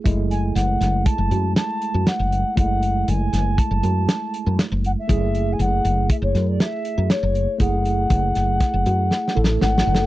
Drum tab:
HH |x--x--x--x--x--x--x--x--x--x--|x--x--x--x--x--x--x--x--x--x--|x--x--x--x--x--x--x--x--x--x--|x--x--x--x--x--x--------------|
SD |------o--o--------o-----o-----|---------o--------o-----o-----|---------------o--o-----o-----|---------o--o-----o-o-o-o-o-o-|
BD |o-----------o-----------------|o-----------o-----------------|o-----------o-----------------|o-----o-----o-----------------|